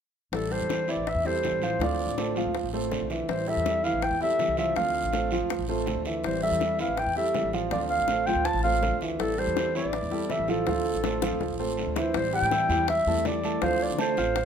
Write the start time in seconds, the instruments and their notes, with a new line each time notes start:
0.32 upright bass A1, nylon-string guitar E3 G3 C4 E4, clarinet A4, high bongo, long guiro
0.51 grand piano G3 G4 A4, clarinet C5, high bongo
0.60 upright bass E2
0.69 nylon-string guitar E3 G3 C4 E4, high bongo, short guiro
0.88 grand piano E3 E4 E5, nylon-string guitar G3 C4 E4, clarinet D5, short guiro
0.97 upright bass A1
1.06 clarinet E5, muted nylon-string guitar stroke, high bongo, long guiro
1.15 upright bass E2
1.25 grand piano G3 G4 A4, nylon-string guitar G3 C4 E4, clarinet C5, high bongo
1.43 nylon-string guitar E3 G3 C4 E4, high bongo, low bongo, short guiro
1.52 upright bass A1
1.62 grand piano F3 F4 F5, clarinet C5, high bongo, short guiro
1.79 upright bass D2, nylon-string guitar D3 A3 C4 F4, grand piano F3 F4 F5, clarinet D5, high bongo, long guiro
2.00 high bongo
2.07 upright bass A1
2.17 nylon-string guitar D3 A3 C4 F4, grand piano A3 A4 C5, high bongo, short guiro
2.35 grand piano F3 F4 F5, nylon-string guitar A3 C4 F4, short guiro
2.46 upright bass D2
2.54 muted nylon-string guitar stroke, high bongo, long guiro
2.64 upright bass A1
2.73 grand piano A3 A4 C5, nylon-string guitar A3 C4 F4, high bongo
2.91 nylon-string guitar D3 A3 C4 F4, high bongo, low bongo, short guiro
3.01 upright bass B1
3.10 grand piano E3 E5, high bongo, short guiro
3.28 upright bass A1, nylon-string guitar E3 G3 C4 E4, clarinet C5, high bongo, long guiro
3.47 grand piano G3 G4 A4, clarinet E5, high bongo
3.57 upright bass E2
3.64 nylon-string guitar E3 G3 C4 E4, high bongo, short guiro
3.83 grand piano E3 E4 E5, nylon-string guitar G3 C4 E4, clarinet F5, short guiro
3.93 upright bass A1
4.02 clarinet G5, muted nylon-string guitar stroke, high bongo, long guiro
4.11 upright bass E2
4.21 grand piano G3 G4 A4, nylon-string guitar G3 C4 E4, clarinet E5, high bongo
4.39 nylon-string guitar E3 G3 C4 E4, high bongo, low bongo, short guiro
4.48 upright bass C2
4.57 grand piano F3 F4 F5, clarinet E5, high bongo, short guiro
4.76 upright bass D2, nylon-string guitar D3 A3 C4 F4, grand piano F3 F4 F5, clarinet F5, high bongo, long guiro
4.95 high bongo
5.03 upright bass A1
5.13 nylon-string guitar D3 A3 C4 F4, grand piano A3 A4 C5, high bongo, short guiro
5.31 grand piano F3 F4 F5, nylon-string guitar A3 C4 F4, short guiro
5.41 upright bass D2
5.50 muted nylon-string guitar stroke, high bongo, long guiro
5.59 upright bass A1
5.69 grand piano A3 A4 C5, nylon-string guitar A3 C4 F4, high bongo
5.86 nylon-string guitar D3 A3 C4 F4, high bongo, low bongo, short guiro
5.95 upright bass D2
6.05 grand piano E3 E5, high bongo, short guiro
6.23 upright bass A1, nylon-string guitar E3 G3 C4 E4, clarinet C5, high bongo, long guiro
6.43 grand piano G3 G4 A4, clarinet E5, high bongo
6.51 upright bass E2
6.60 nylon-string guitar E3 G3 C4 E4, high bongo, short guiro
6.79 grand piano E3 E4 E5, nylon-string guitar G3 C4 E4, clarinet F5, short guiro
6.88 upright bass A1
6.97 clarinet G5, muted nylon-string guitar stroke, high bongo, long guiro
7.06 upright bass E2
7.16 grand piano G3 G4 A4, nylon-string guitar G3 C4 E4, clarinet E5, high bongo
7.34 nylon-string guitar E3 G3 C4 E4, high bongo, low bongo, short guiro
7.43 upright bass A1
7.53 grand piano F3 F4 F5, high bongo, short guiro
7.71 upright bass D2, nylon-string guitar D3 A3 C4 F4, grand piano F3 F4 F5, clarinet D5, high bongo, long guiro
7.90 clarinet F5, high bongo
7.98 upright bass A1
8.08 nylon-string guitar D3 A3 C4 F4, grand piano A3 A4 C5, high bongo, short guiro
8.26 grand piano F3 F4 F5, nylon-string guitar A3 C4 F4, clarinet G5, short guiro
8.35 upright bass D2
8.45 clarinet A5, muted nylon-string guitar stroke, high bongo, long guiro
8.54 upright bass A1
8.63 grand piano A3 A4 C5, nylon-string guitar A3 C4 F4, clarinet F5, high bongo
8.82 nylon-string guitar D3 A3 C4 F4, high bongo, low bongo, short guiro
8.91 upright bass D2
9.01 grand piano E3 E5, high bongo, short guiro
9.19 upright bass A1, nylon-string guitar E3 G3 C4 E4, clarinet A4, high bongo, long guiro
9.38 grand piano G3 G4 A4, clarinet C5, high bongo
9.47 upright bass E2
9.57 nylon-string guitar E3 G3 C4 E4, high bongo, short guiro
9.75 grand piano E3 E4 E5, nylon-string guitar G3 C4 E4, clarinet D5, short guiro
9.85 upright bass A1
9.93 muted nylon-string guitar stroke, high bongo, long guiro
10.03 upright bass E2
10.11 grand piano G3 G4 A4, nylon-string guitar G3 C4 E4, high bongo
10.29 nylon-string guitar E3 G3 C4 E4, clarinet E5, high bongo, low bongo, short guiro
10.39 upright bass A1
10.48 grand piano F3 F4 F5, clarinet A4, high bongo, short guiro
10.66 upright bass D2, nylon-string guitar D3 A3 C4 F4, grand piano F3 F4 F5, high bongo, long guiro
10.85 high bongo
10.94 upright bass A1
11.03 nylon-string guitar D3 A3 C4 F4, grand piano A3 A4 C5, high bongo, short guiro
11.22 grand piano F3 F4 F5, nylon-string guitar A3 C4 F4, high bongo, short guiro
11.31 upright bass D2
11.41 muted nylon-string guitar stroke, low bongo, long guiro
11.50 upright bass A1
11.59 grand piano A3 A4 C5, nylon-string guitar A3 C4 F4
11.77 nylon-string guitar D3 A3 C4 F4, short guiro
11.87 upright bass D2
11.96 grand piano E3 E4 E5, clarinet C5, low bongo, short guiro
12.14 upright bass A1, nylon-string guitar E3 G3 C4 E4, clarinet C5, high bongo, long guiro
12.33 grand piano G3 G4 G5, clarinet G5, high bongo
12.42 upright bass A2
12.51 nylon-string guitar E3 G3 C4 E4, grand piano E4 E5 E6, high bongo, short guiro
12.69 upright bass E2, grand piano G3 G4 G5, nylon-string guitar G3 C4 E4, high bongo, short guiro
12.88 clarinet E5, muted nylon-string guitar stroke, high bongo, long guiro
13.06 upright bass E2, nylon-string guitar G3 C4 E4, grand piano A3 A4 A5
13.24 nylon-string guitar E3 G3 C4 E4, clarinet D5, high bongo, low bongo, short guiro
13.44 grand piano A3 A4 A5, high bongo, short guiro
13.62 upright bass D2, nylon-string guitar D3 A3 C4 F4, grand piano F3 F4 F5, clarinet C5, high bongo, long guiro
13.80 clarinet D5, high bongo
13.90 upright bass D3
13.98 nylon-string guitar D3 A3 C4 F4, grand piano A3 A4 A5, clarinet C5, high bongo, short guiro
14.17 upright bass A1, nylon-string guitar A3 C4 F4, grand piano F4 F5 F6, high bongo, short guiro
14.36 muted nylon-string guitar stroke, high bongo, long guiro